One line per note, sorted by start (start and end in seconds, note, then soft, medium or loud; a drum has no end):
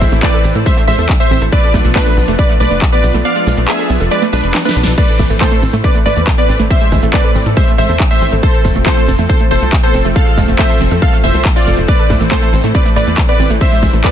0.00 0.10 A1 medium
0.00 1.49 E3 medium
0.00 0.08 G#3 medium
0.00 1.48 A3 medium
0.00 1.49 C4 medium
0.00 0.10 C5 medium
0.00 0.10 E5 loud
0.00 kick medium
0.00 open hi-hat loud
0.00 shaker medium
0.12 0.21 A1 medium
0.12 0.15 A3 medium
0.12 closed hi-hat medium
0.12 shaker soft
0.23 0.27 A3 medium
0.23 0.53 B4 medium
0.23 0.53 D5 loud
0.23 kick loud
0.23 clap loud
0.23 closed hi-hat medium
0.23 shaker soft
0.34 0.38 A4 medium
0.34 closed hi-hat medium
0.44 0.53 A1 medium
0.44 0.47 C4 medium
0.44 open hi-hat loud
0.44 shaker medium
0.55 0.64 A2 medium
0.55 0.62 A4 medium
0.55 closed hi-hat medium
0.55 shaker soft
0.66 0.72 G#3 medium
0.66 0.81 C5 medium
0.66 0.81 E5 medium
0.66 kick loud
0.66 closed hi-hat medium
0.66 shaker soft
0.77 0.81 A3 loud
0.77 closed hi-hat medium
0.77 shaker soft
0.88 0.97 A1 loud
0.88 0.94 G#3 medium
0.88 1.10 C5 medium
0.88 1.10 E5 loud
0.88 1.11 E5 medium
0.88 open hi-hat loud
0.88 shaker medium
0.98 1.07 E2 medium
0.98 1.01 A4 medium
0.98 closed hi-hat medium
0.98 shaker soft
1.09 1.13 D4 loud
1.09 kick loud
1.09 clap loud
1.09 closed hi-hat medium
1.09 shaker soft
1.20 1.23 A3 medium
1.20 1.43 C5 medium
1.20 1.43 E5 medium
1.20 1.43 E5 loud
1.20 closed hi-hat medium
1.20 shaker soft
1.30 1.40 A1 medium
1.30 1.33 C4 medium
1.30 open hi-hat loud
1.30 shaker medium
1.42 1.50 A1 medium
1.42 1.48 A4 medium
1.42 closed hi-hat medium
1.42 shaker soft
1.52 4.94 F3 medium
1.52 1.57 A3 medium
1.52 4.94 B3 medium
1.52 4.94 D4 medium
1.52 1.83 B4 medium
1.52 1.83 D5 loud
1.52 kick loud
1.52 closed hi-hat medium
1.52 shaker medium
1.63 1.68 A4 medium
1.63 closed hi-hat medium
1.74 1.83 B1 medium
1.74 1.78 A3 medium
1.74 kick medium
1.74 open hi-hat loud
1.74 shaker medium
1.85 1.94 B1 medium
1.85 1.87 A3 medium
1.85 closed hi-hat medium
1.85 shaker soft
1.96 2.00 A3 loud
1.96 2.26 D4 medium
1.96 2.26 B4 loud
1.96 kick loud
1.96 clap loud
1.96 closed hi-hat medium
1.96 shaker soft
2.06 2.11 A3 loud
2.06 closed hi-hat medium
2.17 2.26 B1 medium
2.17 2.20 B3 medium
2.17 open hi-hat loud
2.17 shaker medium
2.28 2.37 F1 medium
2.28 2.31 A3 loud
2.28 closed hi-hat medium
2.28 shaker soft
2.39 2.43 B3 medium
2.39 2.54 B4 medium
2.39 2.54 D5 medium
2.39 kick loud
2.39 closed hi-hat medium
2.39 shaker medium
2.49 2.52 A3 loud
2.49 closed hi-hat medium
2.49 shaker soft
2.60 2.69 B1 medium
2.60 2.65 A3 medium
2.60 2.83 B4 medium
2.60 2.83 D5 medium
2.60 2.83 D5 loud
2.60 open hi-hat loud
2.60 shaker medium
2.71 2.80 F1 medium
2.71 2.74 A3 medium
2.71 closed hi-hat medium
2.71 shaker soft
2.82 2.84 A3 medium
2.82 kick loud
2.82 clap loud
2.82 closed hi-hat medium
2.82 shaker medium
2.92 2.97 B3 loud
2.92 3.15 B4 medium
2.92 3.15 D5 loud
2.92 3.16 D5 medium
2.92 closed hi-hat medium
2.92 shaker soft
3.03 3.12 B1 loud
3.03 3.06 B3 medium
3.03 open hi-hat loud
3.03 shaker medium
3.14 3.23 B1 medium
3.14 3.17 A3 loud
3.14 closed hi-hat medium
3.14 shaker soft
3.25 3.29 B3 medium
3.25 3.55 D5 medium
3.25 3.55 F5 loud
3.25 closed hi-hat medium
3.25 shaker soft
3.36 3.42 G#3 medium
3.36 closed hi-hat medium
3.36 shaker soft
3.47 3.56 B1 medium
3.47 3.53 G#3 medium
3.47 open hi-hat loud
3.47 shaker medium
3.57 3.66 B1 medium
3.57 3.60 A3 medium
3.57 closed hi-hat medium
3.57 shaker soft
3.68 3.72 A3 medium
3.68 3.99 G#4 medium
3.68 3.99 E5 loud
3.68 clap loud
3.68 closed hi-hat medium
3.68 shaker soft
3.79 3.83 A4 medium
3.79 closed hi-hat medium
3.79 shaker soft
3.90 3.99 B1 medium
3.90 3.92 B3 medium
3.90 open hi-hat loud
3.90 shaker medium
4.00 4.09 F1 medium
4.00 4.07 A4 medium
4.00 closed hi-hat medium
4.00 shaker soft
4.11 4.18 G#3 medium
4.11 4.27 B4 medium
4.11 4.27 D5 medium
4.11 closed hi-hat medium
4.11 shaker medium
4.22 4.26 A3 loud
4.22 closed hi-hat medium
4.22 shaker soft
4.33 4.42 B1 medium
4.33 4.39 G#3 medium
4.33 4.56 D4 medium
4.33 4.56 B4 medium
4.33 4.56 B4 loud
4.33 open hi-hat loud
4.33 shaker loud
4.44 4.53 F1 medium
4.44 4.46 A4 medium
4.44 closed hi-hat medium
4.44 shaker soft
4.54 4.59 D4 loud
4.54 snare medium
4.54 clap loud
4.54 closed hi-hat medium
4.54 shaker medium
4.65 4.68 A3 medium
4.65 4.88 D4 medium
4.65 4.88 B4 loud
4.65 4.88 B4 medium
4.65 snare medium
4.65 closed hi-hat medium
4.65 shaker soft
4.76 4.85 B1 loud
4.76 4.79 B3 medium
4.76 open hi-hat loud
4.76 shaker loud
4.83 4.96 B1 medium
4.83 4.93 A4 medium
4.83 snare loud
4.83 open hi-hat medium
4.83 shaker soft
4.98 8.40 E3 medium
4.98 14.12 A3 medium
4.98 5.02 A3 medium
4.98 14.12 C4 medium
4.98 5.28 B4 medium
4.98 5.28 D5 loud
4.98 kick loud
4.98 closed hi-hat medium
4.98 crash medium
4.98 shaker medium
5.08 5.13 A4 medium
5.08 closed hi-hat medium
5.19 5.28 A1 loud
5.19 5.24 A3 medium
5.19 kick medium
5.19 open hi-hat loud
5.19 shaker medium
5.30 5.39 A1 medium
5.30 5.33 A3 medium
5.30 closed hi-hat medium
5.30 shaker soft
5.41 5.45 A3 loud
5.41 5.71 A4 medium
5.41 5.71 C5 loud
5.41 5.71 C5 medium
5.41 kick loud
5.41 clap loud
5.41 closed hi-hat medium
5.41 shaker medium
5.52 5.56 A3 loud
5.52 closed hi-hat medium
5.62 5.71 A1 medium
5.62 5.65 C4 medium
5.62 open hi-hat loud
5.62 shaker medium
5.73 5.82 A2 medium
5.73 5.76 A3 loud
5.73 closed hi-hat medium
5.73 shaker soft
5.84 5.88 C4 medium
5.84 5.99 B4 medium
5.84 5.99 D5 medium
5.84 kick loud
5.84 closed hi-hat medium
5.84 shaker medium
5.95 5.97 A3 loud
5.95 closed hi-hat medium
5.95 shaker soft
6.06 6.15 A1 loud
6.06 6.10 A3 medium
6.06 6.28 B4 medium
6.06 6.28 D5 medium
6.06 6.28 D5 loud
6.06 open hi-hat loud
6.06 shaker loud
6.16 6.25 E2 medium
6.16 6.19 A3 medium
6.16 closed hi-hat medium
6.16 shaker soft
6.27 6.30 A3 medium
6.27 kick loud
6.27 clap loud
6.27 closed hi-hat medium
6.27 shaker medium
6.38 6.42 B3 loud
6.38 6.61 B4 medium
6.38 6.61 D5 loud
6.38 6.61 D5 medium
6.38 closed hi-hat medium
6.38 shaker soft
6.49 6.58 A1 medium
6.49 6.51 C4 medium
6.49 open hi-hat loud
6.49 shaker medium
6.59 6.69 A1 medium
6.59 6.62 A3 loud
6.59 closed hi-hat medium
6.59 shaker soft
6.70 6.75 C4 medium
6.70 7.01 C5 medium
6.70 7.01 E5 loud
6.70 kick loud
6.70 closed hi-hat medium
6.70 shaker medium
6.81 6.88 G#3 medium
6.81 closed hi-hat medium
6.92 7.01 A1 loud
6.92 6.98 G#3 medium
6.92 kick medium
6.92 open hi-hat loud
6.92 shaker medium
7.03 7.12 A1 medium
7.03 7.05 A3 medium
7.03 closed hi-hat medium
7.03 shaker soft
7.13 7.18 A3 medium
7.13 7.44 B4 medium
7.13 7.44 D5 loud
7.13 kick loud
7.13 clap loud
7.13 closed hi-hat medium
7.13 shaker medium
7.24 7.29 A4 medium
7.24 closed hi-hat medium
7.35 7.44 A1 medium
7.35 7.38 C4 medium
7.35 open hi-hat loud
7.35 shaker medium
7.45 7.55 A2 medium
7.45 7.52 A4 medium
7.45 closed hi-hat medium
7.45 shaker soft
7.57 7.63 G#3 medium
7.57 7.72 C5 medium
7.57 7.72 E5 medium
7.57 kick loud
7.57 closed hi-hat medium
7.57 shaker medium
7.67 7.72 A3 loud
7.67 closed hi-hat medium
7.67 shaker soft
7.78 7.87 A1 medium
7.78 7.85 G#3 medium
7.78 8.01 C5 medium
7.78 8.01 E5 loud
7.78 open hi-hat loud
7.78 shaker medium
7.89 7.98 E2 medium
7.89 7.92 A4 medium
7.89 closed hi-hat medium
7.89 shaker soft
8.00 8.04 D4 loud
8.00 kick loud
8.00 clap loud
8.00 closed hi-hat medium
8.00 shaker medium
8.11 8.13 A3 medium
8.11 8.33 C5 medium
8.11 8.33 E5 loud
8.11 8.33 E5 medium
8.11 closed hi-hat medium
8.11 shaker soft
8.22 8.30 A1 medium
8.22 8.24 C4 medium
8.22 open hi-hat loud
8.22 shaker medium
8.32 8.41 A1 medium
8.32 8.39 A4 medium
8.32 closed hi-hat medium
8.32 shaker soft
8.43 11.85 F3 medium
8.43 8.47 A3 medium
8.43 8.73 A4 medium
8.43 8.73 C5 loud
8.43 kick loud
8.43 closed hi-hat medium
8.43 shaker medium
8.54 8.58 A4 medium
8.54 closed hi-hat medium
8.65 8.74 F1 loud
8.65 8.69 A3 medium
8.65 kick medium
8.65 open hi-hat loud
8.65 shaker loud
8.75 8.84 F1 medium
8.75 8.78 A3 medium
8.75 closed hi-hat medium
8.75 shaker soft
8.86 8.91 A3 loud
8.86 9.17 A4 medium
8.86 9.17 C5 loud
8.86 9.17 C5 medium
8.86 kick loud
8.86 clap loud
8.86 closed hi-hat medium
8.86 shaker medium
8.97 9.01 A3 loud
8.97 closed hi-hat medium
9.08 9.17 F1 medium
9.08 9.10 C4 medium
9.08 open hi-hat loud
9.08 shaker loud
9.19 9.28 F2 medium
9.19 9.21 A3 loud
9.19 closed hi-hat medium
9.19 shaker soft
9.29 9.34 C4 medium
9.29 9.45 A4 medium
9.29 9.45 C5 medium
9.29 kick loud
9.29 closed hi-hat medium
9.29 shaker medium
9.40 9.43 A3 loud
9.40 closed hi-hat medium
9.40 shaker soft
9.51 9.60 F1 loud
9.51 9.55 A3 medium
9.51 9.74 A4 medium
9.51 9.74 C5 medium
9.51 9.74 C5 loud
9.51 open hi-hat loud
9.51 shaker medium
9.62 9.71 C2 medium
9.62 9.64 A3 medium
9.62 closed hi-hat medium
9.62 shaker soft
9.73 9.75 A3 medium
9.73 kick loud
9.73 clap loud
9.73 closed hi-hat medium
9.73 shaker medium
9.83 9.88 B3 loud
9.83 10.06 A4 medium
9.83 10.06 C5 loud
9.83 10.06 C5 medium
9.83 closed hi-hat medium
9.83 shaker soft
9.94 10.03 F1 medium
9.94 9.97 C4 medium
9.94 open hi-hat loud
9.94 shaker medium
10.05 10.14 F1 medium
10.05 10.08 A3 loud
10.05 closed hi-hat medium
10.05 shaker soft
10.16 10.20 C4 medium
10.16 10.46 A4 medium
10.16 10.46 F5 loud
10.16 kick loud
10.16 closed hi-hat medium
10.16 shaker medium
10.27 10.33 G#3 medium
10.27 closed hi-hat medium
10.27 shaker soft
10.37 10.46 F1 medium
10.37 10.44 G#3 medium
10.37 kick medium
10.37 open hi-hat loud
10.37 shaker loud
10.48 10.57 F1 medium
10.48 10.51 A3 medium
10.48 closed hi-hat medium
10.48 shaker soft
10.59 10.63 A3 medium
10.59 10.89 C5 medium
10.59 10.89 E5 loud
10.59 10.89 E5 medium
10.59 kick loud
10.59 clap loud
10.59 closed hi-hat medium
10.59 shaker medium
10.69 10.74 A4 medium
10.69 closed hi-hat medium
10.69 shaker soft
10.80 10.89 F1 medium
10.80 10.83 C4 medium
10.80 open hi-hat loud
10.80 shaker medium
10.91 11.00 F2 medium
10.91 10.98 A4 medium
10.91 closed hi-hat medium
10.91 shaker soft
11.02 11.09 G#3 medium
11.02 11.17 A4 medium
11.02 11.17 F5 medium
11.02 kick loud
11.02 closed hi-hat medium
11.02 shaker medium
11.13 11.17 A3 loud
11.13 closed hi-hat medium
11.13 shaker soft
11.24 11.33 F1 loud
11.24 11.26 E3 loud
11.24 11.46 C5 medium
11.24 11.46 E5 loud
11.24 open hi-hat loud
11.24 shaker loud
11.34 11.43 C2 medium
11.34 11.41 A4 medium
11.34 closed hi-hat medium
11.34 shaker soft
11.45 11.52 A4 medium
11.45 kick loud
11.45 clap loud
11.45 closed hi-hat medium
11.45 shaker medium
11.56 11.62 C4 medium
11.56 11.79 F4 medium
11.56 11.79 D5 loud
11.56 11.79 D5 medium
11.56 closed hi-hat medium
11.56 shaker soft
11.67 11.76 F1 medium
11.67 11.73 A4 medium
11.67 open hi-hat loud
11.67 shaker medium
11.78 11.86 F1 medium
11.78 11.80 A2 medium
11.78 closed hi-hat medium
11.78 shaker soft
11.88 14.12 E3 medium
11.88 11.93 A3 medium
11.88 12.19 B4 medium
11.88 12.19 D5 loud
11.88 kick loud
11.88 closed hi-hat medium
11.88 shaker soft
11.99 12.03 A4 medium
11.99 closed hi-hat medium
12.10 12.19 A1 medium
12.10 12.14 A3 medium
12.10 kick medium
12.10 open hi-hat loud
12.10 shaker medium
12.21 12.30 A1 medium
12.21 12.23 A3 medium
12.21 closed hi-hat medium
12.21 shaker soft
12.31 12.36 A3 loud
12.31 12.62 A4 medium
12.31 12.62 C5 loud
12.31 12.62 C5 medium
12.31 kick loud
12.31 clap loud
12.31 closed hi-hat medium
12.31 shaker medium
12.42 12.47 A3 loud
12.42 closed hi-hat medium
12.53 12.62 A1 loud
12.53 12.56 C4 medium
12.53 open hi-hat loud
12.53 shaker loud
12.64 12.73 A2 medium
12.64 12.66 A3 loud
12.64 closed hi-hat medium
12.64 shaker soft
12.75 12.79 C4 medium
12.75 12.90 B4 medium
12.75 12.90 D5 medium
12.75 kick loud
12.75 closed hi-hat medium
12.75 shaker medium
12.85 12.88 A3 loud
12.85 closed hi-hat medium
12.85 shaker soft
12.96 13.05 A1 loud
12.96 13.01 A3 medium
12.96 13.19 B4 medium
12.96 13.19 D5 loud
12.96 13.19 D5 medium
12.96 open hi-hat loud
12.96 shaker loud
13.07 13.16 E2 medium
13.07 13.10 A3 medium
13.07 closed hi-hat medium
13.07 shaker soft
13.18 13.20 A3 medium
13.18 kick loud
13.18 clap loud
13.18 closed hi-hat medium
13.18 shaker medium
13.29 13.33 B3 loud
13.29 13.52 B4 medium
13.29 13.51 D5 loud
13.29 13.52 D5 loud
13.29 closed hi-hat medium
13.29 shaker soft
13.39 13.48 A1 medium
13.39 13.42 C4 medium
13.39 open hi-hat loud
13.39 shaker medium
13.50 13.59 A1 medium
13.50 13.53 A3 loud
13.50 closed hi-hat medium
13.50 shaker soft
13.61 13.65 C4 medium
13.61 13.91 C5 medium
13.61 13.91 E5 loud
13.61 kick loud
13.61 closed hi-hat medium
13.61 shaker medium
13.72 13.78 G#3 medium
13.72 closed hi-hat medium
13.83 13.92 A1 loud
13.83 13.89 G#3 medium
13.83 kick medium
13.83 open hi-hat loud
13.83 shaker medium
13.93 14.02 A1 medium
13.93 13.96 A3 medium
13.93 closed hi-hat medium
13.93 shaker soft
14.04 14.08 A3 medium
14.04 14.12 B4 medium
14.04 14.12 D5 medium
14.04 14.12 D5 loud
14.04 kick loud
14.04 clap loud
14.04 closed hi-hat medium
14.04 shaker soft